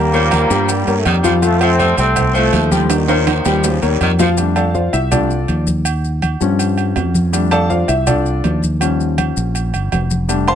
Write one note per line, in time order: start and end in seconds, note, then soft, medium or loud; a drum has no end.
0.00 0.44 D#2 medium
0.00 0.95 G3 medium
0.00 0.94 A#3 loud
0.13 0.70 F3 medium
0.13 0.43 A#3 medium
0.13 0.44 A#4 medium
0.13 0.44 C#5 medium
0.13 high conga soft
0.13 maracas soft
0.31 high conga loud
0.31 low agogo loud
0.31 short guiro medium
0.31 maracas soft
0.50 0.84 G2 medium
0.50 0.80 G3 medium
0.50 0.81 G4 medium
0.50 0.81 G5 medium
0.50 high conga soft
0.50 short guiro medium
0.50 maracas medium
0.69 high conga soft
0.69 low agogo medium
0.69 long guiro medium
0.69 maracas medium
0.87 1.04 G2 medium
0.87 1.17 A#3 medium
0.87 1.18 A#4 medium
0.87 1.18 C#5 medium
0.87 high conga soft
0.87 low agogo medium
0.87 maracas soft
0.99 1.06 A3 medium
1.05 1.92 F2 medium
1.05 1.15 D#3 medium
1.05 1.43 D#3 medium
1.05 1.43 G3 medium
1.05 high conga medium
1.05 low agogo loud
1.05 short guiro medium
1.05 maracas soft
1.23 1.33 F3 medium
1.23 1.39 F3 medium
1.23 1.39 F4 medium
1.23 1.39 F5 loud
1.23 high conga medium
1.23 short guiro medium
1.23 maracas medium
1.42 1.73 F3 medium
1.42 1.61 F3 medium
1.42 1.61 A3 loud
1.42 1.73 F4 medium
1.42 1.73 F5 medium
1.42 high conga soft
1.42 low agogo medium
1.42 long guiro medium
1.42 maracas medium
1.61 1.70 F3 medium
1.61 1.97 A3 medium
1.61 1.97 C4 loud
1.61 high conga soft
1.61 low agogo loud
1.61 maracas soft
1.78 2.09 G3 medium
1.78 2.10 A3 medium
1.78 2.10 A4 medium
1.78 2.10 C5 medium
1.78 high conga medium
1.78 short guiro medium
1.78 maracas soft
1.97 2.49 C2 loud
1.97 2.32 A3 medium
1.97 2.32 C4 loud
1.97 low agogo medium
1.97 short guiro medium
1.97 maracas medium
2.16 2.31 A3 medium
2.16 2.31 A4 medium
2.16 2.32 C5 medium
2.16 high conga soft
2.16 low conga medium
2.16 low agogo loud
2.16 long guiro medium
2.16 maracas medium
2.34 2.78 F3 medium
2.34 2.70 F3 medium
2.34 2.65 A3 medium
2.34 2.69 A3 medium
2.34 2.65 A4 medium
2.34 2.65 C5 medium
2.34 high conga soft
2.34 maracas soft
2.53 3.40 D#2 medium
2.53 high conga medium
2.53 low timbale medium
2.53 low agogo medium
2.53 short guiro medium
2.53 maracas soft
2.71 2.89 D3 medium
2.71 2.89 F3 medium
2.71 3.02 G3 medium
2.71 3.02 G4 loud
2.71 3.02 G5 medium
2.71 high conga medium
2.71 short guiro medium
2.71 maracas medium
2.90 3.27 A#2 medium
2.90 3.27 D#3 medium
2.90 high conga soft
2.90 high timbale medium
2.90 low agogo loud
2.90 long guiro medium
2.90 maracas medium
3.08 3.65 F3 medium
3.08 3.39 A#3 medium
3.08 3.39 A#4 medium
3.08 3.39 C#5 medium
3.08 high conga soft
3.08 high timbale loud
3.08 maracas soft
3.27 3.62 A#2 medium
3.27 3.62 D#3 medium
3.27 high conga medium
3.27 high timbale medium
3.27 low agogo loud
3.27 short guiro medium
3.27 maracas soft
3.45 3.80 D#2 medium
3.45 3.76 G3 medium
3.45 3.76 G4 loud
3.45 3.76 G5 medium
3.45 high conga soft
3.45 low timbale medium
3.45 short guiro medium
3.45 maracas medium
3.64 3.82 C#3 medium
3.64 3.82 F3 medium
3.64 high conga soft
3.64 low timbale medium
3.64 low agogo medium
3.64 long guiro medium
3.64 maracas loud
3.82 4.00 D#2 medium
3.82 4.18 D#3 medium
3.82 4.17 G3 medium
3.82 4.12 A#3 medium
3.82 4.13 A#4 medium
3.82 4.13 C#5 medium
3.82 high conga soft
3.82 low agogo medium
3.82 maracas soft
4.01 4.87 F2 medium
4.01 4.10 D#3 medium
4.01 high conga medium
4.01 low agogo loud
4.01 short guiro medium
4.01 maracas soft
4.19 4.34 F3 medium
4.19 4.29 F3 medium
4.19 4.34 F4 medium
4.19 4.35 F5 loud
4.19 high conga medium
4.19 low timbale medium
4.19 short guiro medium
4.19 maracas medium
4.37 4.62 G3 medium
4.37 4.62 A3 medium
4.37 4.63 D4 medium
4.37 high conga soft
4.37 low agogo medium
4.37 maracas medium
4.56 4.74 A4 medium
4.56 4.73 D5 medium
4.56 4.73 F5 medium
4.56 4.74 A5 medium
4.56 high conga soft
4.56 low agogo loud
4.56 maracas soft
4.74 4.93 F4 medium
4.74 4.93 C5 medium
4.74 4.92 D5 soft
4.74 4.92 F5 medium
4.74 high conga medium
4.74 maracas soft
4.93 5.45 C2 medium
4.93 5.11 E4 medium
4.93 5.11 E5 medium
4.93 low agogo medium
4.93 maracas medium
5.11 5.28 G3 medium
5.11 5.28 A3 soft
5.11 5.28 D4 medium
5.11 5.63 F4 medium
5.11 5.63 A4 medium
5.11 5.63 D5 medium
5.11 high conga soft
5.11 low conga medium
5.11 low agogo loud
5.11 maracas medium
5.30 high conga soft
5.30 maracas soft
5.48 6.35 D#2 medium
5.48 high conga medium
5.48 low agogo medium
5.48 maracas soft
5.67 high conga medium
5.67 maracas medium
5.85 low agogo loud
5.85 maracas medium
6.04 high conga soft
6.04 maracas soft
6.22 high conga loud
6.22 low agogo loud
6.22 maracas soft
6.40 6.92 G2 medium
6.40 7.29 F3 medium
6.40 7.29 G3 soft
6.40 7.30 C#4 medium
6.40 high conga soft
6.40 maracas medium
6.59 high conga soft
6.59 low agogo medium
6.59 maracas medium
6.78 high conga soft
6.78 low agogo medium
6.78 maracas soft
6.96 7.83 F2 loud
6.96 high conga medium
6.96 low timbale medium
6.96 low agogo medium
6.96 maracas soft
7.14 high conga medium
7.14 maracas medium
7.33 7.86 G3 medium
7.33 7.86 A3 medium
7.33 7.86 D4 medium
7.33 low agogo medium
7.33 maracas medium
7.51 7.70 A4 medium
7.51 7.69 D5 medium
7.51 7.68 F5 medium
7.51 7.70 A5 loud
7.51 high conga soft
7.51 low agogo loud
7.51 maracas soft
7.70 7.88 F4 medium
7.70 7.88 C5 medium
7.70 7.88 D5 medium
7.70 7.88 F5 medium
7.70 high conga medium
7.70 maracas soft
7.88 8.40 C2 medium
7.88 8.07 E4 medium
7.88 8.06 E5 medium
7.88 low agogo medium
7.88 maracas medium
8.07 8.59 D4 medium
8.07 8.59 F4 medium
8.07 8.59 A4 medium
8.07 8.59 D5 medium
8.07 high conga soft
8.07 low conga medium
8.07 low agogo loud
8.07 maracas medium
8.25 high conga soft
8.25 maracas soft
8.44 9.31 D#2 medium
8.44 high conga medium
8.44 low timbale medium
8.44 low agogo medium
8.44 maracas soft
8.62 high conga medium
8.62 maracas medium
8.80 10.25 F3 medium
8.80 10.25 G3 soft
8.80 10.25 C#4 medium
8.80 high conga soft
8.80 low agogo loud
8.80 maracas medium
9.00 high conga soft
9.00 maracas soft
9.18 high conga medium
9.18 low agogo loud
9.18 maracas soft
9.37 9.71 A#1 medium
9.37 high conga soft
9.37 maracas medium
9.55 high conga soft
9.55 low agogo medium
9.55 maracas medium
9.74 9.91 G1 medium
9.74 high conga soft
9.74 low agogo medium
9.74 maracas soft
9.92 10.55 F1 medium
9.92 high conga medium
9.92 low timbale medium
9.92 low agogo medium
9.92 maracas soft
10.11 high conga medium
10.11 maracas medium
10.28 10.55 G3 medium
10.28 10.55 A3 medium
10.28 10.55 D4 medium
10.28 low agogo medium
10.28 maracas medium
10.48 10.55 C5 medium
10.48 10.55 F5 medium
10.48 10.55 A5 medium
10.48 10.55 C6 loud
10.48 high conga soft
10.48 low agogo loud
10.48 maracas soft